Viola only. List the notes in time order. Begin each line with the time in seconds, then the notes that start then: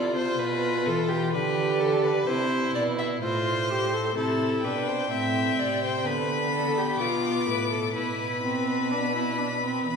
Already playing: F4
1.34 G4
2.29 E4
3.24 F4
3.71 G4
3.94 A4
4.17 E4
4.65 D4
5.12 C4
6.07 B3
7.96 E4
8.43 C4
8.91 D4
9.15 E4
9.39 D4
9.62 C4
9.86 B3